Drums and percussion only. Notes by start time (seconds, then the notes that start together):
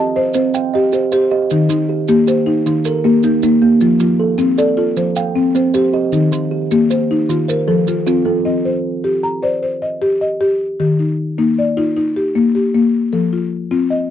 0.34 maracas
0.54 maracas
0.93 maracas
1.12 maracas
1.50 maracas
1.70 maracas
2.08 maracas
2.28 maracas
2.66 maracas
2.85 maracas
3.23 maracas
3.43 maracas
3.81 maracas
4.00 maracas
4.38 maracas
4.58 maracas
4.97 maracas
5.16 maracas
5.55 maracas
5.74 maracas
6.13 maracas
6.32 maracas
6.71 maracas
6.91 maracas
7.30 maracas
7.49 maracas
7.88 maracas
8.07 maracas